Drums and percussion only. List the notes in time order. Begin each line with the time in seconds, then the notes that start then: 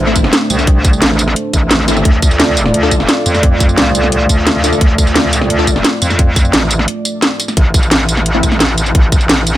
0.16 kick, closed hi-hat, tambourine
0.24 snare
0.33 snare, closed hi-hat, tambourine
0.50 closed hi-hat, tambourine
0.59 snare, tambourine
0.67 kick, closed hi-hat
0.85 kick, closed hi-hat, tambourine
0.93 tambourine
1.02 snare, closed hi-hat
1.19 closed hi-hat, tambourine
1.28 snare
1.36 closed hi-hat
1.53 kick, closed hi-hat, tambourine
1.71 snare, closed hi-hat, tambourine
1.88 closed hi-hat, tambourine
1.97 snare, tambourine
2.05 kick, closed hi-hat
2.22 kick, closed hi-hat, tambourine
2.31 tambourine
2.40 snare, closed hi-hat
2.57 closed hi-hat, tambourine
2.66 snare
2.74 closed hi-hat
2.91 kick, closed hi-hat, tambourine
3.00 snare
3.09 snare, closed hi-hat, tambourine
3.26 closed hi-hat, tambourine
3.34 snare, tambourine
3.43 kick, closed hi-hat
3.60 kick, closed hi-hat, tambourine
3.69 tambourine
3.78 snare, closed hi-hat
3.95 closed hi-hat, tambourine
4.04 snare
4.12 closed hi-hat
4.29 kick, closed hi-hat, tambourine
4.47 snare, closed hi-hat, tambourine
4.64 closed hi-hat, tambourine
4.73 snare, tambourine
4.81 kick, closed hi-hat
4.98 kick, closed hi-hat, tambourine
5.07 tambourine
5.16 snare, closed hi-hat
5.33 closed hi-hat, tambourine
5.41 snare
5.50 closed hi-hat
5.67 kick, closed hi-hat, tambourine
5.76 snare
5.85 snare, closed hi-hat, tambourine
6.02 closed hi-hat, tambourine
6.10 snare, tambourine
6.19 kick, closed hi-hat
6.36 kick, closed hi-hat, tambourine
6.45 tambourine
6.53 snare, closed hi-hat
6.71 closed hi-hat, tambourine
6.79 snare
6.88 closed hi-hat
7.05 closed hi-hat, tambourine
7.22 snare, closed hi-hat, tambourine
7.40 closed hi-hat, tambourine
7.48 snare, tambourine
7.57 kick, closed hi-hat
7.74 kick, closed hi-hat, tambourine
7.83 tambourine
7.91 snare, closed hi-hat
8.09 closed hi-hat, tambourine
8.17 snare
8.26 closed hi-hat
8.43 kick, closed hi-hat, tambourine
8.52 snare
8.60 snare, closed hi-hat, tambourine
8.78 closed hi-hat, tambourine
8.86 tambourine
8.95 kick, closed hi-hat
9.12 kick, closed hi-hat, tambourine
9.21 tambourine
9.29 snare, closed hi-hat
9.47 closed hi-hat, tambourine